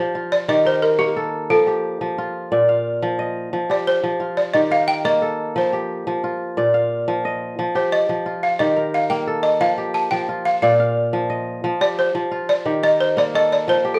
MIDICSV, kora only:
0, 0, Header, 1, 2, 480
1, 0, Start_track
1, 0, Tempo, 338219
1, 2127, Time_signature, 12, 3, 24, 8
1, 19856, End_track
2, 0, Start_track
2, 0, Title_t, "Kora"
2, 0, Program_c, 0, 46
2, 0, Note_on_c, 0, 53, 72
2, 0, Note_on_c, 0, 65, 76
2, 0, Note_on_c, 0, 67, 54
2, 206, Note_off_c, 0, 65, 0
2, 212, Note_on_c, 0, 65, 57
2, 682, Note_off_c, 0, 67, 0
2, 687, Note_on_c, 0, 51, 72
2, 688, Note_on_c, 0, 67, 56
2, 759, Note_off_c, 0, 53, 0
2, 924, Note_on_c, 0, 70, 56
2, 1401, Note_on_c, 0, 58, 71
2, 1652, Note_on_c, 0, 69, 60
2, 1737, Note_off_c, 0, 70, 0
2, 2129, Note_on_c, 0, 53, 78
2, 2199, Note_off_c, 0, 51, 0
2, 2360, Note_off_c, 0, 65, 0
2, 2363, Note_off_c, 0, 67, 0
2, 2368, Note_on_c, 0, 67, 59
2, 2835, Note_off_c, 0, 53, 0
2, 2852, Note_on_c, 0, 53, 68
2, 3098, Note_on_c, 0, 65, 57
2, 3522, Note_off_c, 0, 69, 0
2, 3572, Note_on_c, 0, 46, 70
2, 3573, Note_on_c, 0, 74, 56
2, 3638, Note_off_c, 0, 53, 0
2, 3813, Note_on_c, 0, 77, 57
2, 4139, Note_off_c, 0, 58, 0
2, 4292, Note_on_c, 0, 53, 75
2, 4373, Note_off_c, 0, 67, 0
2, 4525, Note_on_c, 0, 75, 60
2, 4611, Note_off_c, 0, 74, 0
2, 4991, Note_off_c, 0, 53, 0
2, 5008, Note_on_c, 0, 53, 72
2, 5076, Note_off_c, 0, 46, 0
2, 5230, Note_off_c, 0, 77, 0
2, 5245, Note_on_c, 0, 67, 60
2, 5246, Note_off_c, 0, 65, 0
2, 5708, Note_off_c, 0, 53, 0
2, 5725, Note_on_c, 0, 53, 72
2, 5959, Note_on_c, 0, 65, 55
2, 6044, Note_off_c, 0, 75, 0
2, 6444, Note_off_c, 0, 67, 0
2, 6449, Note_on_c, 0, 51, 73
2, 6450, Note_on_c, 0, 67, 62
2, 6515, Note_off_c, 0, 53, 0
2, 6681, Note_on_c, 0, 70, 60
2, 7162, Note_on_c, 0, 58, 78
2, 7405, Note_on_c, 0, 69, 57
2, 7491, Note_off_c, 0, 70, 0
2, 7886, Note_on_c, 0, 53, 73
2, 7953, Note_off_c, 0, 51, 0
2, 8107, Note_off_c, 0, 65, 0
2, 8124, Note_off_c, 0, 67, 0
2, 8129, Note_on_c, 0, 67, 58
2, 8596, Note_off_c, 0, 53, 0
2, 8613, Note_on_c, 0, 53, 71
2, 8853, Note_on_c, 0, 65, 54
2, 9275, Note_off_c, 0, 69, 0
2, 9326, Note_on_c, 0, 46, 69
2, 9332, Note_on_c, 0, 74, 61
2, 9393, Note_off_c, 0, 53, 0
2, 9564, Note_on_c, 0, 77, 57
2, 9900, Note_off_c, 0, 58, 0
2, 10045, Note_on_c, 0, 53, 75
2, 10134, Note_off_c, 0, 67, 0
2, 10288, Note_on_c, 0, 75, 55
2, 10373, Note_off_c, 0, 74, 0
2, 10751, Note_off_c, 0, 53, 0
2, 10768, Note_on_c, 0, 53, 74
2, 10832, Note_off_c, 0, 46, 0
2, 10982, Note_off_c, 0, 77, 0
2, 11000, Note_on_c, 0, 67, 62
2, 11001, Note_off_c, 0, 65, 0
2, 11466, Note_off_c, 0, 53, 0
2, 11483, Note_on_c, 0, 53, 67
2, 11721, Note_on_c, 0, 65, 54
2, 11807, Note_off_c, 0, 75, 0
2, 12199, Note_off_c, 0, 67, 0
2, 12204, Note_on_c, 0, 67, 59
2, 12205, Note_on_c, 0, 51, 70
2, 12272, Note_off_c, 0, 53, 0
2, 12439, Note_on_c, 0, 70, 55
2, 12913, Note_on_c, 0, 58, 74
2, 13160, Note_on_c, 0, 69, 58
2, 13245, Note_off_c, 0, 70, 0
2, 13631, Note_on_c, 0, 53, 75
2, 13713, Note_off_c, 0, 51, 0
2, 13868, Note_off_c, 0, 67, 0
2, 13869, Note_off_c, 0, 65, 0
2, 13874, Note_on_c, 0, 67, 57
2, 14341, Note_off_c, 0, 53, 0
2, 14358, Note_on_c, 0, 53, 68
2, 14599, Note_on_c, 0, 65, 56
2, 15030, Note_off_c, 0, 69, 0
2, 15078, Note_on_c, 0, 46, 71
2, 15083, Note_on_c, 0, 74, 62
2, 15154, Note_off_c, 0, 53, 0
2, 15323, Note_on_c, 0, 77, 57
2, 15651, Note_off_c, 0, 58, 0
2, 15796, Note_on_c, 0, 53, 75
2, 15878, Note_off_c, 0, 67, 0
2, 16032, Note_on_c, 0, 75, 57
2, 16117, Note_off_c, 0, 74, 0
2, 16501, Note_off_c, 0, 53, 0
2, 16518, Note_on_c, 0, 53, 82
2, 16595, Note_off_c, 0, 46, 0
2, 16740, Note_off_c, 0, 77, 0
2, 16748, Note_off_c, 0, 65, 0
2, 16759, Note_on_c, 0, 67, 57
2, 17222, Note_off_c, 0, 53, 0
2, 17239, Note_on_c, 0, 53, 70
2, 17476, Note_on_c, 0, 65, 55
2, 17551, Note_off_c, 0, 75, 0
2, 17957, Note_off_c, 0, 67, 0
2, 17960, Note_on_c, 0, 51, 68
2, 17963, Note_on_c, 0, 67, 64
2, 18037, Note_off_c, 0, 53, 0
2, 18204, Note_on_c, 0, 70, 56
2, 18688, Note_on_c, 0, 58, 75
2, 18939, Note_on_c, 0, 69, 57
2, 19024, Note_off_c, 0, 70, 0
2, 19410, Note_on_c, 0, 53, 71
2, 19479, Note_off_c, 0, 51, 0
2, 19624, Note_off_c, 0, 65, 0
2, 19643, Note_off_c, 0, 67, 0
2, 19649, Note_on_c, 0, 67, 58
2, 19856, Note_off_c, 0, 53, 0
2, 19856, Note_off_c, 0, 58, 0
2, 19856, Note_off_c, 0, 67, 0
2, 19856, Note_off_c, 0, 69, 0
2, 19856, End_track
0, 0, End_of_file